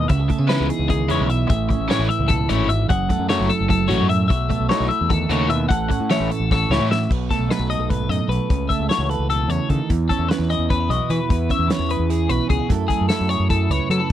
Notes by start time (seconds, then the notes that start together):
Already playing: E3 A3 E4
0.08 C#2 C#3 F#4 E5, muted overdriven electric guitar stroke, kick, closed hi-hat
0.20 G#4
0.28 A3, muted overdriven electric guitar stroke, kick, closed hi-hat
0.39 C#3 B3
0.47 C#3 E3 G#3 C#4 D#4 E4 B4, snare, closed hi-hat
0.60 C#2
0.68 G#4, muted overdriven electric guitar stroke, closed hi-hat
0.79 C#2
0.89 D#3 G#4, muted overdriven electric guitar stroke, kick, closed hi-hat
1.09 E2 C#3 G#3 C#4 E4 C#5, closed hi-hat
1.20 B1
1.28 B2 E5, muted overdriven electric guitar stroke, closed hi-hat
1.47 A1 A2 G#4 E5, muted overdriven electric guitar stroke, kick, closed hi-hat
1.69 C#4, muted overdriven electric guitar stroke, kick, closed hi-hat
1.79 A1
1.88 E3 A3 C#4 E4 C#5, snare, closed hi-hat
1.99 A1 E4
2.09 E5, muted overdriven electric guitar stroke, closed hi-hat
2.19 C#2
2.28 B2 A4, muted overdriven electric guitar stroke, kick, closed hi-hat
2.48 G#1 A2 E3 A3 C#4 E4 C#5, closed hi-hat
2.68 G#2 E5, muted overdriven electric guitar stroke, closed hi-hat
2.88 F#1 F#2 G#4 F#5, muted overdriven electric guitar stroke, kick, closed hi-hat
3.09 A3, muted overdriven electric guitar stroke, kick, closed hi-hat
3.19 F#2
3.29 F#3 A3 C#4 E4 F#4 C#5, snare, closed hi-hat
3.40 F#1
3.49 A4, muted overdriven electric guitar stroke, closed hi-hat
3.60 F#1
3.69 F#2 A4, muted overdriven electric guitar stroke, kick, closed hi-hat
3.88 A1 G#2 F#3 A3 C#4 F#4 C#5, closed hi-hat
4.00 F#2
4.09 A2 E5, muted overdriven electric guitar stroke, closed hi-hat
4.28 B1 B2 F#4 E5, muted overdriven electric guitar stroke, kick, closed hi-hat
4.49 A3, muted overdriven electric guitar stroke, kick, closed hi-hat
4.60 B1
4.69 F#3 A3 D#4 E4 F#4 C#5, snare, closed hi-hat
4.80 B1
4.89 E5, muted overdriven electric guitar stroke, closed hi-hat
5.01 E2
5.09 D#3 A4, muted overdriven electric guitar stroke, kick, closed hi-hat
5.29 D#2 C#3 F#3 A3 D#4 F#4 C#5, closed hi-hat
5.48 B2 E5, muted overdriven electric guitar stroke, closed hi-hat
5.69 A1 A2 A4 F#5, muted overdriven electric guitar stroke, kick, closed hi-hat
5.89 C#4, muted overdriven electric guitar stroke, kick, closed hi-hat
6.00 A2
6.10 E3 A3 C#4 E4 F#4 C#5, snare, closed hi-hat
6.20 A1
6.31 A4, muted overdriven electric guitar stroke, closed hi-hat
6.40 A1
6.51 F#4 A4, muted overdriven electric guitar stroke, kick, snare
6.70 C#2 E3 A3 C#4 E4 F#4 C#5, snare
6.80 A2
6.91 E5, muted overdriven electric guitar stroke, snare
7.09 B1 B2, kick, crash
7.30 A3 A4, kick, snare, closed hi-hat
7.39 B1
7.48 F#3 D#4 B4, snare, closed hi-hat
7.59 B1
7.68 F#4 D#5, closed hi-hat
7.79 B1 A4
7.88 G#2 B4, kick, closed hi-hat
8.07 F#2 A2 D#5
8.11 closed hi-hat
8.28 B1 B2 B4, closed hi-hat
8.50 C#2 C#3, kick, closed hi-hat
8.69 A3 E5, kick, closed hi-hat
8.79 C#2
8.89 E3 F#4 C#5, snare, closed hi-hat
8.98 C#2
9.10 A4 B4, closed hi-hat
9.19 C#2
9.30 B2 A4, closed hi-hat
9.48 E2 C#3 C#5, closed hi-hat
9.69 C#3 D#3 A4, kick, closed hi-hat
9.90 E2, kick, closed hi-hat
10.09 C#4 A4, kick, closed hi-hat
10.19 E2
10.29 E3 C#4 B4, snare, closed hi-hat
10.38 E2 E4
10.50 G#4 D#5, closed hi-hat
10.59 E2
10.69 C#4 B4, kick, closed hi-hat
10.80 E4
10.89 B1 B2 F#4 D#5, closed hi-hat
11.10 E3 E4 B4, closed hi-hat
11.29 E2, kick, closed hi-hat
11.49 C#4 E5, kick, closed hi-hat
11.59 E2
11.67 E3 E4, snare, closed hi-hat
11.71 C#5
11.79 E2
11.89 G#4 B4, closed hi-hat
11.99 E2
12.09 E4 G#4, closed hi-hat
12.28 B1 B2 F#4 B4, closed hi-hat
12.47 C#2 C#4 G#4, kick, closed hi-hat
12.59 E4
12.68 F#2 F#3 A3 E4 A4, kick, closed hi-hat
12.88 A3 G#4, kick, closed hi-hat
13.01 F#2
13.09 F#3 E4 A4, snare, closed hi-hat
13.21 F#2
13.29 G#4 C#5, closed hi-hat
13.40 F#2
13.49 E4 A4, kick, closed hi-hat
13.70 C#2 C#3 B4 C#5, closed hi-hat
13.90 F#3 C#4 A4, closed hi-hat
14.00 E4